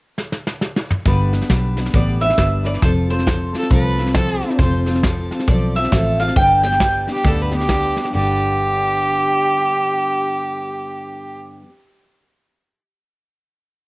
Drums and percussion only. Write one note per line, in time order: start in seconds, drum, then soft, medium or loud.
0.17 snare medium
0.32 snare medium
0.47 snare medium
0.61 snare medium
0.76 snare medium
0.90 mid tom medium
1.05 kick medium
1.05 snare soft
1.33 snare soft
1.41 snare soft
1.50 kick medium
1.50 snare medium
1.50 hi-hat pedal medium
1.77 snare soft
1.85 snare soft
1.94 kick medium
1.94 snare soft
2.21 snare soft
2.30 snare soft
2.38 kick medium
2.38 snare loud
2.38 hi-hat pedal medium
2.65 snare soft
2.74 snare soft
2.83 kick loud
2.83 snare soft
3.10 snare soft
3.19 snare soft
3.27 kick medium
3.27 snare loud
3.27 hi-hat pedal medium
3.54 snare soft
3.63 snare soft
3.71 kick loud
3.71 snare soft
3.98 snare soft
4.07 snare soft
4.15 kick medium
4.15 snare loud
4.15 hi-hat pedal medium
4.42 snare soft
4.50 snare soft
4.59 kick loud
4.59 snare soft
4.86 snare soft
4.95 snare soft
5.03 kick medium
5.03 snare medium
5.03 hi-hat pedal medium
5.31 snare soft
5.39 snare soft
5.48 kick loud
5.48 snare soft
5.75 snare soft
5.83 snare soft
5.92 kick medium
5.92 snare loud
5.92 hi-hat pedal medium
6.19 snare soft
6.28 snare soft
6.36 kick loud
6.36 snare soft
6.63 snare soft
6.72 snare soft
6.80 kick medium
6.80 snare loud
6.80 hi-hat pedal medium
7.08 snare soft
7.16 snare soft
7.25 kick medium
7.25 snare soft
7.52 snare soft
7.61 snare soft
7.69 kick medium
7.69 snare medium
7.69 hi-hat pedal medium
7.96 snare soft
8.05 snare soft